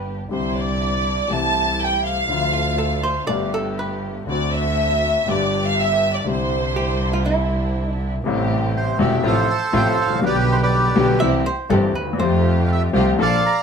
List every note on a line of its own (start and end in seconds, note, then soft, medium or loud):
0.00 0.22 G1 medium
0.00 0.22 G2 medium
0.00 0.21 D3 soft
0.00 0.21 G3 soft
0.00 0.22 B3 medium
0.00 0.22 B3 soft
0.00 0.22 D4 medium
0.00 0.22 G4 medium
0.00 0.23 G4 soft
0.00 0.16 B4 medium
0.29 1.26 C2 soft
0.29 1.26 C2 medium
0.29 1.26 C3 medium
0.29 1.25 D3 soft
0.29 1.25 G3 soft
0.29 1.26 C4 soft
0.29 1.26 C4 medium
0.29 1.26 D4 medium
0.29 1.26 E4 medium
0.29 0.55 C5 medium
0.33 1.27 E4 soft
0.58 1.32 D5 medium
1.30 2.24 C2 medium
1.30 2.25 C2 medium
1.30 2.25 C3 medium
1.30 2.24 E3 soft
1.30 2.25 A3 medium
1.30 2.25 A3 soft
1.30 2.25 C4 medium
1.30 2.25 E4 medium
1.30 2.26 E4 medium
1.30 1.81 A5 medium
1.82 2.06 G5 medium
2.05 3.50 F5 medium
2.28 3.24 D2 medium
2.28 3.24 D3 medium
2.28 3.24 F3 soft
2.28 3.24 A3 medium
2.28 3.25 A3 soft
2.28 3.24 D4 medium
2.28 3.24 F4 medium
2.28 3.25 F4 medium
2.53 2.80 F4 medium
2.78 3.04 A4 medium
3.03 3.27 C5 medium
3.27 4.23 G1 medium
3.27 4.23 G2 medium
3.27 4.22 D3 soft
3.27 4.22 A3 soft
3.27 4.23 A3 medium
3.27 4.23 B3 medium
3.27 4.23 B3 soft
3.27 4.23 G4 medium
3.27 3.54 D5 loud
3.31 4.24 G4 medium
3.54 3.79 A4 medium
3.79 4.13 B4 medium
4.27 5.22 D2 medium
4.27 5.22 D3 medium
4.27 5.22 A3 soft
4.27 5.22 C4 medium
4.27 5.23 C4 soft
4.27 5.22 D4 medium
4.27 5.22 F#4 medium
4.27 5.23 F#4 medium
4.27 4.52 D5 medium
4.54 5.28 E5 loud
5.26 6.21 G1 medium
5.26 6.22 G1 medium
5.26 6.22 G2 medium
5.26 6.21 D3 medium
5.26 6.21 G3 soft
5.26 6.21 B3 medium
5.26 6.22 B3 soft
5.26 6.21 D4 medium
5.26 6.21 G4 medium
5.26 5.65 D5 medium
5.31 6.23 G4 medium
5.65 5.77 F5 medium
5.78 6.15 E5 loud
6.15 6.27 D5 medium
6.24 8.15 C2 medium
6.24 8.15 C3 medium
6.24 8.14 D3 medium
6.24 8.15 G3 soft
6.24 8.15 C4 medium
6.24 8.15 C4 soft
6.24 8.15 D4 medium
6.24 8.15 E4 medium
6.28 8.16 E4 medium
6.28 7.72 C5 medium
6.76 7.11 G4 medium
7.13 7.25 F4 medium
7.26 7.93 E4 medium
7.93 8.21 D4 medium
8.24 8.96 A1 loud
8.24 8.96 A1 medium
8.24 8.96 A2 medium
8.24 8.95 C3 medium
8.24 8.96 G3 medium
8.24 8.95 A3 medium
8.24 8.96 A3 medium
8.24 8.95 C4 medium
8.24 8.95 G4 medium
8.28 8.97 E4 medium
8.77 8.99 C5 medium
8.99 9.19 E1 loud
8.99 9.20 E1 medium
8.99 9.20 E2 medium
8.99 9.20 C3 medium
8.99 9.20 G3 medium
8.99 9.20 A3 medium
8.99 9.20 C4 medium
8.99 9.20 E4 medium
8.99 9.20 G4 loud
8.99 9.26 E5 medium
9.23 9.44 A1 medium
9.23 9.45 A1 loud
9.23 9.44 A2 medium
9.23 9.44 C3 medium
9.23 9.44 F3 medium
9.23 9.44 A3 medium
9.23 9.44 C4 medium
9.23 9.44 F4 medium
9.23 9.45 F4 medium
9.23 10.20 A4 medium
9.23 9.37 F5 loud
9.27 10.20 C5 medium
9.50 9.75 A5 loud
9.72 9.94 A1 medium
9.72 9.94 A2 medium
9.72 9.94 C3 medium
9.72 9.94 F3 medium
9.72 9.93 A3 medium
9.72 9.94 A3 medium
9.72 9.93 C4 medium
9.72 9.93 F4 medium
9.72 9.94 F4 medium
9.77 9.87 G5 loud
9.98 10.22 A1 medium
9.98 10.25 F5 medium
10.04 10.10 G#1 medium
10.10 10.16 A1 medium
10.15 10.22 A#1 medium
10.20 10.92 B1 medium
10.20 10.93 B1 loud
10.20 10.92 B2 medium
10.20 10.91 D3 medium
10.20 10.92 G3 medium
10.20 10.92 B3 medium
10.20 10.93 B3 medium
10.20 10.93 D4 medium
10.20 10.92 G4 loud
10.20 10.93 G4 medium
10.26 10.61 G4 medium
10.26 10.62 B4 medium
10.26 10.36 D5 loud
10.52 10.57 C5 medium
10.63 11.19 G4 medium
10.63 11.19 B4 medium
10.63 11.07 D5 medium
10.95 11.17 B1 loud
10.95 11.17 B2 medium
10.95 11.17 D3 medium
10.95 11.17 G3 medium
10.95 11.17 B3 medium
10.95 11.17 D4 medium
10.95 11.17 G4 medium
11.20 11.41 C2 medium
11.20 11.42 C2 medium
11.20 11.41 C3 medium
11.20 11.41 E3 medium
11.20 11.41 G3 medium
11.20 11.42 C4 medium
11.20 11.42 E4 medium
11.20 11.41 G4 medium
11.20 11.42 G4 loud
11.20 11.46 E5 loud
11.46 11.69 C5 loud
11.70 11.91 G1 medium
11.70 11.91 G1 loud
11.70 11.91 G2 medium
11.70 11.91 E3 medium
11.70 11.91 G3 medium
11.70 11.91 C4 medium
11.70 11.91 E4 medium
11.70 11.91 G4 medium
11.70 11.95 A4 medium
11.95 12.18 D#2 medium
11.95 12.19 B4 medium
12.01 12.07 D2 medium
12.07 12.13 D#2 medium
12.13 12.19 E2 medium
12.18 12.90 F2 loud
12.18 12.90 F2 medium
12.18 12.90 F3 medium
12.18 12.89 A3 medium
12.18 12.90 A3 medium
12.18 12.90 C4 medium
12.18 12.90 F4 medium
12.18 12.90 G4 loud
12.18 12.91 G4 medium
12.18 12.48 C5 medium
12.66 12.70 F5 medium
12.72 12.82 E5 loud
12.93 13.14 C2 loud
12.93 13.14 C3 medium
12.93 13.14 F3 medium
12.93 13.14 A3 medium
12.93 13.15 A3 medium
12.93 13.14 C4 medium
12.93 13.14 F4 medium
12.93 13.14 G4 medium
12.93 13.15 G4 loud
12.93 13.06 F5 medium
13.18 13.39 A#1 loud
13.18 13.39 A#1 medium
13.18 13.39 A#2 medium
13.18 13.39 F3 medium
13.18 13.39 A#3 medium
13.18 13.39 D4 medium
13.18 13.39 A4 medium
13.18 13.40 A4 medium
13.18 13.63 D5 medium
13.18 13.43 A5 loud
13.22 13.63 F5 medium
13.46 13.63 A#5 loud